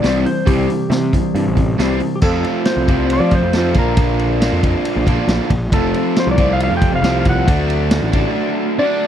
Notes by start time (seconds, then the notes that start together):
Already playing: D5
0.02 C2 C3 E3 G3 C4, snare, open hi-hat
0.25 C3 E3 G3 C5, open hi-hat
0.46 C2 C3 E3 G3 C4 G4, kick, open hi-hat
0.68 C3 E3 G3, open hi-hat
0.90 C3 E3 G3, snare, open hi-hat
1.13 C3 E3 G3, kick, open hi-hat
1.35 G2 C3 E3 G3, open hi-hat
1.47 A1
1.56 C3 E3 G3, kick, open hi-hat
1.78 C2 C3 E3 G3 C4, snare, open hi-hat
2.00 C3 E3 G3, open hi-hat
2.16 G4
2.22 F2 C3 F3 A3 C4 F4 A4, kick, crash
2.44 ride
2.65 C5, snare, ride
2.77 C2
2.88 F2 C3 F3 A3 C4 F4, kick, ride
3.10 D5, ride
3.20 F3
3.31 C5, kick, ride
3.42 F2
3.53 F2 C3 F3 A3 C4 F4, snare, ride
3.74 A#1 A#2 D3 F3 A#3 D4 F4, kick, ride
3.79 A#4
3.97 kick, ride
4.19 ride
4.40 A#2 D3 F3 A#3 D4 F4, snare, ride
4.53 F2
4.63 kick, ride
4.85 ride
4.96 A#1
5.06 A#1 A#2 D3 F3 A#3 D4 F4, kick, ride
5.27 A#1, snare, ride
5.50 A#1, kick, ride
5.72 F1 F2 C3 F3 A3 C4 F4 A4, kick, ride
5.94 ride
6.16 C5, snare, ride
6.27 C2
6.31 D5
6.38 F2 C3 F3 A3 C4 F4, kick, ride
6.53 F5
6.60 F5, ride
6.71 F2
6.77 G5
6.82 kick, ride
6.92 F1 F5
7.02 C2 F2 C3 F3 A3 C4 F4, snare, ride
7.21 F5
7.25 kick, ride
7.29 F#5
7.47 D2 D3 F#3 A3 D4 F#4, kick, ride
7.70 ride
7.91 snare, ride
8.03 A1
8.12 D3 F#3 A3 D4 F#4, kick, ride
8.79 D3 F#3 A3 D4 F#4 D5